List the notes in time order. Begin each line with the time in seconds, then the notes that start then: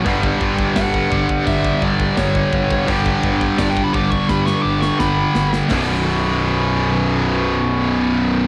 0.04 G1 G2 D3 G3, kick, open hi-hat
0.23 kick
0.41 G1, kick
0.58 kick
0.76 G1 F#5, kick, snare, open hi-hat
0.94 kick
1.10 G1 G2 D3 G3, kick
1.29 kick
1.47 G1 E5, kick, open hi-hat
1.65 kick
1.82 G1 D5, kick
2.00 kick
2.17 G1 C#5, kick, snare, open hi-hat
2.35 kick
2.53 G1, kick
2.71 kick
2.87 G1 G2 D3 G3, kick, open hi-hat
3.06 kick
3.23 G1, kick
3.41 kick
3.58 G1 D5, kick, snare, open hi-hat
3.70 G5
3.77 kick
3.84 B5
3.93 G1 G2 D3 G3 D6, kick
4.11 C#6, kick
4.29 G2 B5, kick, snare
4.47 C#6, snare
4.62 G1 D6
4.81 C#6, snare
5.00 G1 B5, kick, snare
5.35 G1, snare
5.53 snare
5.69 B0 B1 F#2, kick, snare, open hi-hat
5.73 B2